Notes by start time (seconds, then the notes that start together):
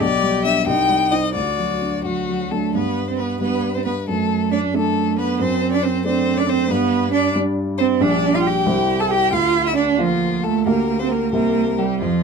0.00 B1 G4 D5
0.22 G3
0.44 D4 D5 E5
0.67 C2 D#4 G5
0.89 G3
1.11 D#4 C5 D#5
1.34 D2 F#4 D5
1.59 F#3
1.82 D4
2.05 D2 F#3 F#4
2.29 F#3
2.51 A3 D4 A4
2.74 G2 B3 B4
3.07 C4 C5
3.17 B3 B4
3.40 G3 B3 D4 B4
3.74 C4 C5
3.85 B3 B4
4.06 F#2 A3 A4
4.51 D4 D5
4.74 A3 D4 A4 D5
5.18 B3 B4
5.39 F#2 C4 C5
5.72 D4 D5
5.83 C4 C5
6.05 A3 C4 D4 C5 D5
6.37 D4 D5
6.49 C4 C5
6.70 G2 B3 B4
7.12 D4 D5
7.35 G3 D4 D5
7.78 C4 C5
8.00 A#1 G3 D4 D5
8.34 F4 F5
8.43 G4 G5
8.66 C2 G3 E4 C5
8.99 A4 A5
9.09 G4 G5
9.32 D2 F4 F5
9.66 E4 E5
9.76 D4 D5
9.98 F3 A#3 F4 F5
10.43 A3 A4
10.66 D2 A#3 G4 A#4 F5
10.99 C4 C5
11.08 A#3 A#4
11.32 C2 A#3 C4 G4 A#4 E5
11.78 G3 G4
12.01 F2 F3 F4